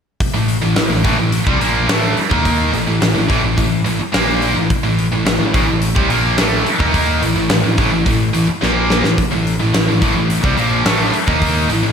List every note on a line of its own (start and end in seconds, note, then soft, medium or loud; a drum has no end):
0.20 kick medium
0.20 open hi-hat medium
0.34 0.60 A1 medium
0.34 0.57 A2 medium
0.34 0.57 E3 medium
0.48 open hi-hat medium
0.62 0.75 A1 medium
0.62 0.75 A2 medium
0.62 0.75 E3 medium
0.76 0.90 A1 medium
0.76 0.89 A2 medium
0.76 0.89 E3 medium
0.76 snare loud
0.76 open hi-hat medium
0.90 1.04 A1 medium
0.90 1.03 A2 medium
0.90 1.03 E3 medium
1.04 1.18 A1 medium
1.04 1.17 A2 medium
1.04 1.17 E3 loud
1.04 kick loud
1.04 open hi-hat medium
1.18 1.45 A1 medium
1.18 1.41 A2 medium
1.18 1.41 E3 medium
1.32 open hi-hat medium
1.47 1.60 C2 medium
1.47 1.60 C3 medium
1.47 1.60 G3 loud
1.47 kick medium
1.60 1.87 A#1 medium
1.60 1.87 A#2 medium
1.60 1.88 F3 medium
1.60 1.88 A#3 medium
1.60 open hi-hat medium
1.88 2.15 A1 medium
1.88 2.15 A2 medium
1.88 2.16 E3 medium
1.88 2.16 A3 medium
1.88 snare loud
1.88 open hi-hat medium
2.17 muted distorted electric guitar stroke medium
2.17 muted picked electric bass stroke soft
2.17 open hi-hat medium
2.30 2.70 D#2 medium
2.30 2.72 D#3 medium
2.30 2.72 A#3 medium
2.30 2.72 D#4 medium
2.30 kick loud
2.45 kick medium
2.45 open hi-hat medium
2.73 2.86 A1 medium
2.73 2.86 A2 medium
2.73 2.86 E3 medium
2.73 open hi-hat medium
2.87 3.00 A1 medium
2.87 2.99 A2 medium
2.87 2.99 E3 medium
3.01 3.15 A1 medium
3.01 3.13 A2 medium
3.01 3.13 E3 medium
3.01 snare loud
3.01 open hi-hat medium
3.14 3.28 A1 medium
3.14 3.27 A2 medium
3.14 3.28 E3 medium
3.28 3.43 A1 medium
3.28 3.42 A2 medium
3.28 3.42 E3 loud
3.28 kick medium
3.28 open hi-hat soft
3.43 3.57 A1 medium
3.43 3.56 A2 medium
3.43 3.56 E3 medium
3.57 3.84 A1 medium
3.57 3.80 A2 medium
3.57 3.80 E3 medium
3.57 kick medium
3.57 open hi-hat medium
3.84 3.99 A1 medium
3.84 3.98 A2 medium
3.84 3.99 E3 medium
3.84 open hi-hat medium
3.99 muted distorted electric guitar stroke medium
3.99 muted picked electric bass stroke soft
4.12 4.53 A#1 medium
4.12 4.54 A#2 medium
4.12 4.55 F3 medium
4.12 4.55 A#3 loud
4.12 snare loud
4.12 open hi-hat medium
4.42 open hi-hat medium
4.55 4.69 A1 medium
4.55 4.69 A2 medium
4.55 4.70 E3 medium
4.70 kick loud
4.70 open hi-hat medium
4.84 5.10 A1 medium
4.84 5.06 A2 medium
4.84 5.06 E3 medium
4.99 open hi-hat soft
5.12 5.25 A1 medium
5.12 5.24 A2 medium
5.12 5.25 E3 medium
5.25 5.39 A1 medium
5.25 5.38 A2 medium
5.25 5.38 E3 medium
5.25 snare loud
5.25 open hi-hat medium
5.39 5.53 A1 medium
5.39 5.52 A2 medium
5.39 5.53 E3 medium
5.53 5.67 A1 medium
5.53 5.66 A2 medium
5.53 5.66 E3 medium
5.53 kick loud
5.53 open hi-hat medium
5.67 5.94 A1 medium
5.67 5.90 A2 medium
5.67 5.90 E3 medium
5.82 open hi-hat medium
5.95 6.09 C2 medium
5.95 6.08 C3 medium
5.95 6.09 G3 medium
5.95 kick loud
6.09 6.36 A#1 medium
6.09 6.37 A#2 medium
6.09 6.37 F3 medium
6.09 6.37 A#3 medium
6.09 open hi-hat medium
6.37 6.64 A1 medium
6.37 6.64 A2 medium
6.37 6.65 E3 medium
6.37 6.65 A3 medium
6.37 snare loud
6.37 open hi-hat medium
6.65 muted distorted electric guitar stroke medium
6.65 muted picked electric bass stroke soft
6.65 open hi-hat medium
6.79 7.19 D#2 medium
6.79 7.21 D#3 medium
6.79 7.21 A#3 medium
6.79 7.21 D#4 loud
6.79 kick loud
6.94 kick medium
6.94 open hi-hat medium
7.21 7.35 A1 medium
7.21 7.34 A2 medium
7.21 7.35 E3 medium
7.21 open hi-hat medium
7.36 7.49 A1 medium
7.36 7.48 A2 medium
7.36 7.48 E3 medium
7.49 7.63 A1 medium
7.49 7.63 A2 medium
7.49 7.63 E3 medium
7.49 snare loud
7.49 open hi-hat medium
7.64 7.77 A1 medium
7.64 7.76 A2 medium
7.64 7.77 E3 medium
7.78 7.91 A1 medium
7.78 7.91 A2 medium
7.78 7.91 E3 loud
7.78 kick loud
7.78 open hi-hat medium
7.92 8.06 A1 medium
7.92 8.05 A2 medium
7.92 8.05 E3 medium
8.06 8.32 A1 medium
8.06 8.28 A2 medium
8.06 8.29 E3 medium
8.06 kick medium
8.06 open hi-hat medium
8.33 8.48 A1 medium
8.33 8.46 A2 medium
8.33 8.48 E3 medium
8.33 open hi-hat medium
8.47 muted distorted electric guitar stroke medium
8.47 muted picked electric bass stroke soft
8.61 9.01 A#1 medium
8.61 9.03 A#2 medium
8.61 9.03 F3 medium
8.61 9.03 A#3 medium
8.61 snare medium
8.90 snare medium
9.04 9.17 A1 medium
9.04 9.18 A2 medium
9.04 9.18 E3 medium
9.04 snare medium
9.18 kick medium
9.18 open hi-hat medium
9.31 9.58 A1 medium
9.31 9.54 A2 medium
9.31 9.54 E3 medium
9.47 open hi-hat medium
9.60 9.73 A1 medium
9.60 9.72 A2 medium
9.60 9.73 E3 medium
9.73 9.87 A1 medium
9.73 9.87 A2 medium
9.73 9.87 E3 medium
9.73 snare loud
9.73 open hi-hat medium
9.88 10.01 A1 medium
9.88 10.00 A2 medium
9.88 10.01 E3 medium
10.01 10.15 A1 medium
10.01 10.14 A2 loud
10.01 10.15 E3 medium
10.01 kick loud
10.01 open hi-hat medium
10.15 10.42 A1 medium
10.15 10.38 A2 medium
10.15 10.38 E3 medium
10.30 open hi-hat medium
10.43 10.57 C2 medium
10.43 10.56 C3 medium
10.43 10.57 G3 loud
10.43 kick loud
10.57 10.84 A#1 medium
10.57 10.84 A#2 loud
10.57 10.85 F3 medium
10.57 10.85 A#3 medium
10.57 open hi-hat medium
10.85 11.12 A1 medium
10.85 11.12 A2 medium
10.85 11.13 E3 medium
10.85 11.13 A3 loud
10.85 snare loud
10.85 open hi-hat medium
11.13 muted distorted electric guitar stroke medium
11.13 muted picked electric bass stroke soft
11.13 open hi-hat medium
11.27 11.67 D#2 medium
11.27 11.68 D#3 medium
11.27 11.69 A#3 medium
11.27 11.69 D#4 medium
11.27 kick loud
11.42 kick medium
11.42 open hi-hat medium
11.69 11.83 A1 medium
11.69 11.82 A2 medium
11.69 11.82 E3 medium
11.69 open hi-hat medium
11.83 11.92 A1 medium
11.83 11.92 A2 medium
11.83 11.92 E3 medium